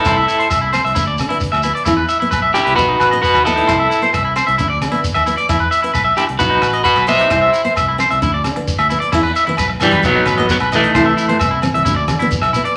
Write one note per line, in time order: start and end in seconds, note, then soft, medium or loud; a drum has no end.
0.00 0.47 E4 medium
0.00 0.48 A4 medium
0.05 0.23 C2 loud
0.05 0.17 E4 medium
0.05 0.14 C5 medium
0.05 kick medium
0.05 cross-stick medium
0.05 closed hi-hat medium
0.05 low agogo medium
0.05 shekere medium
0.17 0.25 E5 medium
0.28 0.36 E4 medium
0.28 closed hi-hat soft
0.28 shekere medium
0.39 0.47 C5 medium
0.39 closed hi-hat soft
0.50 0.78 C2 medium
0.50 0.58 E5 medium
0.50 kick medium
0.50 cross-stick medium
0.50 closed hi-hat soft
0.50 low agogo medium
0.50 shekere medium
0.61 0.69 E4 medium
0.73 0.85 C4 medium
0.73 0.80 C5 medium
0.73 cross-stick medium
0.73 closed hi-hat soft
0.73 low agogo medium
0.73 shekere medium
0.85 0.94 C2 medium
0.85 0.92 E5 medium
0.85 closed hi-hat soft
0.95 1.21 D2 medium
0.95 1.08 D4 medium
0.95 1.03 E4 medium
0.95 kick medium
0.95 closed hi-hat soft
0.95 shekere medium
1.07 1.15 D5 medium
1.18 1.46 D3 medium
1.18 kick medium
1.18 cross-stick medium
1.18 closed hi-hat soft
1.18 low agogo medium
1.18 shekere medium
1.29 1.42 B3 medium
1.29 1.37 E4 medium
1.29 closed hi-hat soft
1.40 kick medium
1.40 closed hi-hat soft
1.40 shekere medium
1.52 1.71 D2 medium
1.52 1.60 E5 medium
1.52 cross-stick medium
1.52 low agogo medium
1.63 1.76 B3 medium
1.63 1.71 E4 medium
1.63 closed hi-hat soft
1.63 shekere medium
1.75 1.83 D5 medium
1.75 closed hi-hat soft
1.85 2.05 E2 medium
1.85 1.93 E4 medium
1.85 1.99 E4 medium
1.85 kick medium
1.85 cross-stick medium
1.85 closed hi-hat soft
1.85 low agogo medium
1.85 shekere medium
1.97 2.05 B4 medium
2.09 2.16 E5 medium
2.09 closed hi-hat soft
2.09 shekere medium
2.20 2.34 B3 medium
2.20 2.28 E4 medium
2.20 closed hi-hat soft
2.31 2.50 B1 medium
2.31 2.39 B4 medium
2.31 kick medium
2.31 cross-stick medium
2.31 closed hi-hat soft
2.31 low agogo medium
2.31 shekere medium
2.42 2.50 E5 medium
2.54 2.68 D4 medium
2.54 2.75 E4 medium
2.54 2.75 G4 medium
2.54 cross-stick medium
2.54 closed hi-hat soft
2.54 low agogo medium
2.54 shekere medium
2.65 2.75 C2 medium
2.65 2.73 B4 medium
2.65 closed hi-hat soft
2.76 2.96 B1 medium
2.76 2.90 D#4 medium
2.76 3.19 F#4 medium
2.76 3.22 B4 medium
2.76 kick medium
2.76 closed hi-hat soft
2.76 shekere medium
2.89 2.96 D#4 medium
3.00 3.18 A1 medium
3.00 3.08 B4 medium
3.00 kick medium
3.00 cross-stick medium
3.00 closed hi-hat soft
3.00 low agogo medium
3.00 shekere medium
3.11 3.25 B3 medium
3.11 3.19 D#5 medium
3.11 closed hi-hat soft
3.22 3.43 F#4 medium
3.22 3.45 B4 medium
3.22 kick medium
3.22 closed hi-hat medium
3.22 shekere medium
3.34 3.61 D#2 medium
3.34 3.41 B4 medium
3.34 cross-stick medium
3.34 low agogo medium
3.45 3.59 B3 medium
3.45 4.09 E4 medium
3.45 4.10 A4 medium
3.45 3.53 D#5 medium
3.45 closed hi-hat soft
3.45 shekere medium
3.56 3.64 D#4 medium
3.56 closed hi-hat soft
3.67 3.86 C2 loud
3.67 3.81 E4 medium
3.67 3.75 C5 medium
3.67 kick medium
3.67 cross-stick medium
3.67 closed hi-hat soft
3.67 low agogo medium
3.67 shekere medium
3.79 3.87 E5 medium
3.90 3.98 E4 medium
3.90 closed hi-hat soft
3.90 shekere medium
4.02 4.14 B3 medium
4.02 4.10 C5 medium
4.02 closed hi-hat soft
4.13 4.40 C2 medium
4.13 4.21 E5 medium
4.13 kick medium
4.13 cross-stick medium
4.13 closed hi-hat soft
4.13 low agogo medium
4.13 shekere medium
4.25 4.32 E4 medium
4.36 4.48 C4 medium
4.36 4.44 C5 medium
4.36 cross-stick medium
4.36 closed hi-hat soft
4.36 low agogo medium
4.36 shekere medium
4.47 4.57 C2 medium
4.47 4.54 E5 medium
4.47 closed hi-hat soft
4.58 4.83 D2 medium
4.58 4.72 D4 medium
4.58 4.66 E4 medium
4.58 kick medium
4.58 closed hi-hat soft
4.58 shekere medium
4.70 4.77 D5 medium
4.82 5.08 D3 medium
4.82 kick medium
4.82 cross-stick medium
4.82 closed hi-hat soft
4.82 low agogo medium
4.82 shekere medium
4.92 5.04 B3 medium
4.92 5.00 E4 medium
4.92 closed hi-hat soft
5.04 kick medium
5.04 closed hi-hat soft
5.04 shekere medium
5.14 5.34 D#2 medium
5.14 5.22 E5 medium
5.14 cross-stick medium
5.14 low agogo medium
5.26 5.39 B3 medium
5.26 5.34 E4 medium
5.26 closed hi-hat soft
5.26 shekere medium
5.37 5.45 D5 medium
5.37 closed hi-hat soft
5.49 5.67 E2 loud
5.49 5.61 E4 medium
5.49 5.57 E4 medium
5.49 kick medium
5.49 cross-stick medium
5.49 closed hi-hat soft
5.49 low agogo medium
5.49 shekere medium
5.60 5.68 B4 medium
5.71 5.79 E5 medium
5.71 closed hi-hat soft
5.71 shekere medium
5.82 5.96 B3 medium
5.82 5.90 E4 medium
5.82 closed hi-hat soft
5.94 6.13 B1 medium
5.94 6.02 B4 medium
5.94 kick medium
5.94 cross-stick medium
5.94 closed hi-hat soft
5.94 low agogo medium
5.94 shekere medium
6.04 6.13 E5 medium
6.17 6.30 D4 medium
6.17 6.24 E4 medium
6.17 6.23 G4 medium
6.17 cross-stick medium
6.17 closed hi-hat soft
6.17 low agogo medium
6.17 shekere medium
6.27 6.38 C2 medium
6.27 muted clean electric guitar stroke medium
6.27 closed hi-hat soft
6.39 6.58 B1 loud
6.39 6.53 D#4 medium
6.39 6.82 F#4 medium
6.39 6.83 B4 medium
6.39 kick medium
6.39 closed hi-hat soft
6.39 shekere medium
6.50 6.58 D#4 medium
6.62 6.81 A1 medium
6.62 6.70 B4 medium
6.62 kick medium
6.62 cross-stick medium
6.62 closed hi-hat soft
6.62 low agogo medium
6.62 shekere medium
6.73 6.81 D#5 medium
6.73 closed hi-hat soft
6.84 7.06 F#4 medium
6.84 7.08 B4 medium
6.84 kick medium
6.84 closed hi-hat soft
6.84 shekere medium
6.96 7.24 B1 medium
6.96 7.05 B4 medium
6.96 cross-stick medium
6.96 low agogo medium
7.07 7.21 B3 medium
7.07 7.73 C5 medium
7.07 7.16 D#5 medium
7.07 7.73 E5 medium
7.07 closed hi-hat soft
7.07 shekere medium
7.19 7.28 D#4 medium
7.19 closed hi-hat soft
7.30 7.49 C2 loud
7.30 7.43 E4 medium
7.30 7.39 C5 medium
7.30 kick medium
7.30 cross-stick medium
7.30 closed hi-hat soft
7.30 low agogo medium
7.30 shekere medium
7.42 7.50 E5 medium
7.53 7.61 E4 medium
7.53 closed hi-hat soft
7.53 shekere medium
7.65 7.77 B3 medium
7.65 7.73 C5 medium
7.65 closed hi-hat soft
7.76 8.04 C2 medium
7.76 7.84 E5 medium
7.76 kick medium
7.76 cross-stick medium
7.76 closed hi-hat soft
7.76 low agogo medium
7.76 shekere medium
7.88 7.96 E4 medium
7.98 8.11 C4 medium
7.98 8.07 C5 medium
7.98 cross-stick medium
7.98 closed hi-hat soft
7.98 low agogo medium
7.98 shekere medium
8.10 8.20 C2 medium
8.10 8.18 E5 medium
8.10 closed hi-hat soft
8.22 8.46 D2 medium
8.22 8.34 D4 medium
8.22 8.30 E4 medium
8.22 kick medium
8.22 closed hi-hat soft
8.22 shekere medium
8.34 8.41 D5 medium
8.44 8.72 D3 medium
8.44 kick medium
8.44 cross-stick medium
8.44 closed hi-hat soft
8.44 low agogo medium
8.44 shekere medium
8.56 8.69 B3 medium
8.56 muted clean electric guitar stroke medium
8.56 closed hi-hat soft
8.67 kick medium
8.67 closed hi-hat soft
8.67 shekere medium
8.79 8.97 D2 medium
8.79 8.86 E5 medium
8.79 cross-stick medium
8.79 low agogo medium
8.90 9.03 B3 medium
8.90 8.98 E4 medium
8.90 closed hi-hat soft
8.90 shekere medium
9.00 9.08 D5 medium
9.00 closed hi-hat soft
9.12 9.31 E2 loud
9.12 9.20 E4 medium
9.12 9.26 E4 medium
9.12 kick medium
9.12 cross-stick medium
9.12 crash medium
9.12 low agogo medium
9.12 shekere medium
9.23 9.31 B4 medium
9.35 9.43 E5 medium
9.35 closed hi-hat soft
9.35 shekere medium
9.47 9.61 B3 medium
9.47 9.54 E4 medium
9.47 closed hi-hat soft
9.47 high conga medium
9.57 9.76 B1 medium
9.57 9.66 B4 medium
9.57 kick medium
9.57 cross-stick medium
9.57 closed hi-hat soft
9.57 low agogo medium
9.57 shekere medium
9.70 muted clean electric guitar stroke medium
9.80 10.03 E3 medium
9.80 10.03 G3 medium
9.80 9.95 D4 medium
9.80 cross-stick medium
9.80 closed hi-hat soft
9.80 high conga medium
9.80 low conga medium
9.80 low agogo medium
9.80 shekere medium
9.91 10.01 F#2 medium
9.91 10.00 B4 medium
9.91 closed hi-hat soft
9.91 high conga medium
10.02 10.21 B1 medium
10.02 10.46 F#3 medium
10.02 10.50 B3 medium
10.02 10.17 D#4 medium
10.02 kick medium
10.02 closed hi-hat soft
10.02 low conga medium
10.02 shekere medium
10.15 10.23 D#4 medium
10.26 10.44 A1 medium
10.26 10.34 B4 medium
10.26 kick medium
10.26 cross-stick medium
10.26 closed hi-hat soft
10.26 high conga medium
10.26 low agogo medium
10.26 shekere medium
10.38 10.51 B3 medium
10.38 10.45 D#5 medium
10.38 closed hi-hat soft
10.38 high conga medium
10.49 10.57 F#3 medium
10.49 10.57 B3 medium
10.49 kick medium
10.49 closed hi-hat medium
10.49 shekere medium
10.60 10.87 B1 medium
10.60 10.68 B4 medium
10.60 cross-stick medium
10.60 low agogo medium
10.72 11.37 E3 medium
10.72 11.38 A3 medium
10.72 10.85 B3 medium
10.72 10.80 D#5 medium
10.72 closed hi-hat soft
10.72 low conga medium
10.72 shekere medium
10.83 10.91 D#4 medium
10.83 closed hi-hat soft
10.94 11.12 C2 loud
10.94 11.08 E4 medium
10.94 11.02 C5 medium
10.94 kick medium
10.94 cross-stick medium
10.94 closed hi-hat medium
10.94 low agogo medium
10.94 shekere medium
11.06 11.13 E5 medium
11.17 11.24 E4 medium
11.17 closed hi-hat soft
11.17 shekere medium
11.28 11.41 B3 medium
11.28 11.36 C5 medium
11.28 closed hi-hat soft
11.28 high conga medium
11.39 11.67 C2 medium
11.39 11.47 E5 medium
11.39 kick medium
11.39 cross-stick medium
11.39 closed hi-hat medium
11.39 low agogo medium
11.39 shekere medium
11.51 11.58 E4 medium
11.62 11.75 C4 medium
11.62 cross-stick medium
11.62 closed hi-hat soft
11.62 high conga medium
11.62 low conga medium
11.62 low agogo medium
11.62 shekere medium
11.74 11.83 C2 medium
11.74 11.82 E5 medium
11.74 closed hi-hat medium
11.74 high conga medium
11.85 12.10 D2 loud
11.85 11.99 D4 medium
11.85 11.92 E4 medium
11.85 kick medium
11.85 closed hi-hat soft
11.85 low conga medium
11.85 shekere medium
11.96 12.04 D5 medium
12.08 12.35 D3 medium
12.08 kick medium
12.08 cross-stick medium
12.08 closed hi-hat medium
12.08 high conga medium
12.08 low agogo medium
12.08 shekere medium
12.19 12.33 B3 medium
12.19 12.27 E4 medium
12.19 closed hi-hat soft
12.19 high conga medium
12.31 kick medium
12.31 closed hi-hat medium
12.31 shekere loud
12.42 12.60 B1 medium
12.42 12.49 E5 medium
12.42 cross-stick medium
12.42 low agogo medium
12.53 12.67 B3 medium
12.53 12.61 E4 medium
12.53 closed hi-hat soft
12.53 low conga medium
12.53 shekere medium
12.65 12.72 D5 medium
12.65 closed hi-hat soft